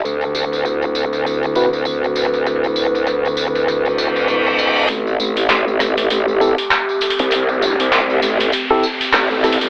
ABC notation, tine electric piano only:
X:1
M:4/4
L:1/16
Q:"Swing 16ths" 1/4=99
K:Ador
V:1 name="Tine electric piano"
z8 z2 [CEFB] z4 z | z16 | z8 z2 [CEGA] z4 z | z8 z [CEGA] z4 [CEGA] z |]